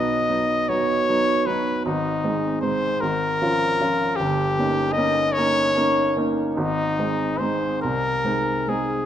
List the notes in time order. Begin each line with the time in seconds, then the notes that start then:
Already playing: B1 F#3 B3 D#4 D#5
0.29 F#3 B3 D#4
0.69 F#3 B3 D#4 C#5
1.09 F#3 B3 D#4
1.46 F#3 B3 D#4 B4
1.86 G#1 D#4
2.24 G#3 C4 D#4
2.61 G#3 C4 D#4 C5
3.01 G#1 A#4
3.42 F3 C#4 F4
3.81 F3 C#4 F4
4.16 G4
4.20 G1
4.58 A#3 C#4 D#4
4.92 D#5
4.97 A#3 C#4 D#4
5.33 C#5
5.38 A#3 C#4 D#4
5.77 A#3 C#4 D#4
6.17 A#3 C#4 D#4
6.55 G#1 D#4
6.99 G#3 C4 D#4
7.38 G#3 C4 D#4 C5
7.82 C2 A#4
8.25 G#3 C4 D#4
8.68 G#3 C4 D#4 G#4